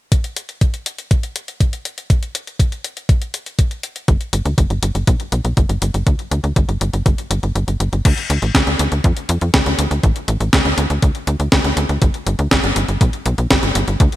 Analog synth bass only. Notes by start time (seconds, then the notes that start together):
4.08 G1
4.33 G1
4.45 D2
4.58 G1
4.70 G1
4.83 G1
4.95 G1
5.07 B1
5.32 B1
5.45 B1
5.57 G1
5.69 G1
5.82 G1
5.94 G1
6.07 D2
6.31 D2
6.44 D2
6.56 G1
6.69 G1
6.81 G1
6.94 G1
7.06 G1
7.31 G1
7.43 G1
7.55 G1
7.68 G1
7.80 G1
7.93 G1
8.05 D2
8.30 D2
8.42 A1
8.55 D2
8.67 D2
8.79 D2
8.92 D2
9.04 F2
9.29 F2
9.42 F2
9.54 D2
9.66 D2
9.79 D2
9.91 D2
10.03 A1
10.28 A1
10.40 A1
10.53 D2
10.65 D2
10.78 D2
10.90 D2
11.03 D2
11.27 D2
11.40 D2
11.52 D2
11.64 D2
11.77 D2
11.89 D2
12.02 G1
12.27 G1
12.39 D2
12.51 G1
12.64 G1
12.76 G1
12.89 G1
13.01 B1
13.26 B1
13.38 B1
13.51 G1
13.63 G1
13.75 G1
13.88 G1
14.00 D2